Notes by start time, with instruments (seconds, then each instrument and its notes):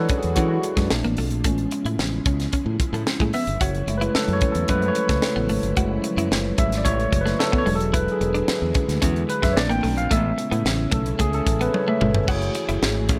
Already playing: string machine E3 G#3 D4 F#4, tine electric piano F#3 G#3 D4 B4 C#5 D5 F#5
0.00 tine electric piano A4
0.09 clean electric guitar C#4, kick, closed hi-hat
0.18 tine electric piano G#4
0.23 fingered electric bass E2, closed hi-hat
0.35 fingered electric bass E3, clean electric guitar C#4, tine electric piano F#4, kick, closed hi-hat
0.49 tine electric piano F#4
0.53 tine electric piano E4
0.63 muted clean electric guitar stroke, closed hi-hat
0.77 fingered electric bass F#2, clean electric guitar G#3, kick, snare, closed hi-hat
0.90 fingered electric bass A#1, string machine A#2 D3 F3 F4, tine electric piano A3 C4 D4, muted clean electric guitar stroke, snare
1.04 fingered electric bass A1, clean electric guitar A#3, closed hi-hat
1.17 fingered electric bass B1, clean electric guitar A3, open hi-hat
1.31 fingered electric bass A#1, closed hi-hat
1.44 fingered electric bass A1, string machine C#3 G#3 E4, tine electric piano G#3 B3 C#4, clean electric guitar A3, kick, closed hi-hat
1.58 closed hi-hat
1.71 muted clean electric guitar stroke, closed hi-hat
1.85 fingered electric bass A2, clean electric guitar E4, closed hi-hat
1.98 fingered electric bass A1, snare
2.26 fingered electric bass C#2, clean electric guitar C#4, kick, closed hi-hat
2.40 snare, closed hi-hat
2.53 clean electric guitar C#4, kick, closed hi-hat
2.66 fingered electric bass A2
2.80 muted clean electric guitar stroke, kick, closed hi-hat
2.93 fingered electric bass A2, clean electric guitar A3, closed hi-hat
3.07 muted clean electric guitar stroke, snare
3.20 fingered electric bass A2, clean electric guitar G#3, kick, closed hi-hat
3.33 clean electric guitar B3, tine electric piano E5, open hi-hat
3.47 fingered electric bass G1, closed hi-hat
3.61 fingered electric bass F#1, string machine F#3, clean electric guitar F#4, tine electric piano C#5, kick, closed hi-hat
3.75 closed hi-hat
3.87 fingered electric bass F#1, tine electric piano G#3 A3 E4, muted clean electric guitar stroke, closed hi-hat
3.97 clean electric guitar E4, tine electric piano B4
4.02 closed hi-hat
4.15 tine electric piano A4, muted fingered electric bass stroke, snare
4.28 fingered electric bass F#2, closed hi-hat
4.33 tine electric piano C#5
4.41 clean electric guitar C#4, kick, closed hi-hat
4.52 fingered electric bass E2, tine electric piano A4, closed hi-hat
4.68 fingered electric bass F#2, tine electric piano G#3 A3 E4 B4, clean electric guitar C#4, kick, closed hi-hat
4.81 tine electric piano C5, closed hi-hat
4.88 tine electric piano C#5
4.95 muted clean electric guitar stroke, closed hi-hat
5.09 fingered electric bass C#2, clean electric guitar A3, kick, snare, closed hi-hat
5.22 muted clean electric guitar stroke, snare
5.36 fingered electric bass A1, clean electric guitar B3
5.49 fingered electric bass G#1, clean electric guitar A3, open hi-hat
5.63 fingered electric bass G1, closed hi-hat
5.77 fingered electric bass F#1, tine electric piano G#3 A3 E4, clean electric guitar F#4, kick, closed hi-hat
6.04 muted clean electric guitar stroke, closed hi-hat
6.17 fingered electric bass F#2, clean electric guitar E4, closed hi-hat
6.31 fingered electric bass F#1, snare
6.58 fingered electric bass G#1, tine electric piano G#3 A3 E4 E5, clean electric guitar C#4, kick, closed hi-hat
6.72 snare, closed hi-hat
6.78 tine electric piano D5
6.85 fingered electric bass A1, clean electric guitar C#4, tine electric piano C#5, kick, closed hi-hat
7.00 closed hi-hat
7.12 fingered electric bass F#1, tine electric piano C#5, muted clean electric guitar stroke, kick, closed hi-hat
7.21 tine electric piano B4
7.26 clean electric guitar A3, snare, closed hi-hat
7.39 tine electric piano A4, muted clean electric guitar stroke, snare
7.52 clean electric guitar B3, kick
7.58 tine electric piano C#5
7.66 fingered electric bass E1, string machine D3 G#3 E4, tine electric piano F#3 G#3 D4, clean electric guitar G#3, open hi-hat
7.75 tine electric piano A4
7.80 closed hi-hat
7.93 clean electric guitar E4, tine electric piano B4, kick, closed hi-hat
8.08 tine electric piano G#4, closed hi-hat
8.21 fingered electric bass E1, muted clean electric guitar stroke, closed hi-hat
8.34 clean electric guitar D4, closed hi-hat
8.48 muted fingered electric bass stroke, snare
8.62 fingered electric bass E2
8.74 clean electric guitar C#4, kick, closed hi-hat
8.89 fingered electric bass D2, snare, closed hi-hat
9.02 fingered electric bass E2, clean electric guitar C#4, kick, closed hi-hat
9.16 closed hi-hat
9.29 tine electric piano B4, muted clean electric guitar stroke, closed hi-hat
9.42 fingered electric bass F#2, clean electric guitar G#3, tine electric piano E5, kick, snare, closed hi-hat
9.53 fingered electric bass A#1, string machine A#2 A3 F4, tine electric piano A3 C4 C#5 D5
9.57 tine electric piano D4, muted clean electric guitar stroke, snare
9.69 fingered electric bass A1, clean electric guitar A#3, tine electric piano G5, closed hi-hat
9.83 fingered electric bass B1, clean electric guitar A3, open hi-hat
9.97 fingered electric bass A#1, tine electric piano F5, closed hi-hat
10.11 fingered electric bass A1, string machine C#3 G#3 C#4 E4, tine electric piano G#3 B3 C#4 E5, clean electric guitar A3, kick, closed hi-hat
10.38 muted clean electric guitar stroke, closed hi-hat
10.51 fingered electric bass A2, clean electric guitar B3, closed hi-hat
10.65 fingered electric bass A1, snare
10.91 fingered electric bass B1, clean electric guitar A3, tine electric piano A4, kick, closed hi-hat
11.06 closed hi-hat
11.19 fingered electric bass C#2, clean electric guitar A3, tine electric piano G#4, kick, closed hi-hat
11.33 tine electric piano A4, closed hi-hat
11.47 fingered electric bass A1, muted clean electric guitar stroke, kick, closed hi-hat
11.61 clean electric guitar B3, tine electric piano B4, closed hi-hat
11.74 tine electric piano C#5, muted clean electric guitar stroke, high tom
11.88 clean electric guitar A3, tine electric piano E5
12.01 fingered electric bass G1, clean electric guitar G#3, mid tom
12.15 floor tom
12.28 fingered electric bass F#1, string machine E3 A3 F#4 G#4, tine electric piano G#3 E4 F#4 G#4 C#5, clean electric guitar F#4, kick, crash
12.34 tine electric piano A3
12.42 closed hi-hat
12.55 muted clean electric guitar stroke, closed hi-hat
12.69 fingered electric bass F#1, clean electric guitar E4, closed hi-hat
12.82 fingered electric bass G#1, snare
13.09 fingered electric bass A1, clean electric guitar C#4, kick, closed hi-hat